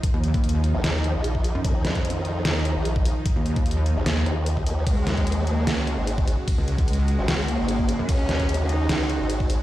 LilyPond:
<<
  \new Staff \with { instrumentName = "Cello" } { \time 4/4 \key ees \minor \tempo 4 = 149 r1 | r1 | r1 | aes4. bes4. r4 |
r4 aes4. bes4. | des'4. ees'4. r4 | }
  \new Staff \with { instrumentName = "Supersaw synth" } { \clef bass \time 4/4 \key ees \minor <ees f ees'>1~ | <ees f ees'>1~ | <ees f ees'>1 | <des aes ges'>1~ |
<des aes ges'>1~ | <des aes ges'>1 | }
  \new Staff \with { instrumentName = "Wobble bass" } { \clef bass \time 4/4 \key ees \minor r16 ees,8 ees,4 r2 ges,16 | r1 | r16 ees,8 ees,4 r16 ees,8 r4. | r1 |
r16 des,8 des,4 r2 ges,16 | r1 | }
  \new Staff \with { instrumentName = "Wobble bass" } { \clef bass \time 4/4 \key ees \minor r4. r16 bes,,16 ees,8. bes,,4 r16 | ees,8 f,4. ees,8. bes,,4 r16 | r4. r16 bes,,16 r8 ees,4 ees,8 | des,8 ees,4. des,8. aes,,4 r16 |
r4. r16 aes,,16 des,8. aes,,4 r16 | des,8 ees,4. des,8. aes,,4 r16 | }
  \new DrumStaff \with { instrumentName = "Drums" } \drummode { \time 4/4 <hh bd>8 hh16 <hh bd>16 hh32 hh16. hh8 <hh sn>8 hh8 hh16 bd16 hho8 | <hh bd>8 <hh sn>16 <hh bd>16 hh32 hh16. hh8 <hh sn>8 hh8 hh16 bd16 hho8 | <hh bd>8 hh16 <hh bd>16 hh32 hh16. hh8 <hh sn>8 hh8 hh16 bd16 hho8 | <hh bd cymr>8 <hh sn>16 <hh bd>16 <hh cymr>32 hh16. hh8 <hh cymr sn>8 hh8 <hh cymr>16 bd16 hho8 |
<hh bd cymr>8 hh16 <hh bd>16 <hh cymr>32 hh16. hh8 <hh cymr sn>8 hh8 <hh cymr>16 bd16 hho8 | <hh bd cymr>8 <hh sn>16 <hh bd>16 <hh cymr>32 hh16. hh8 <hh cymr sn>8 hh8 <hh cymr>16 bd16 hho8 | }
>>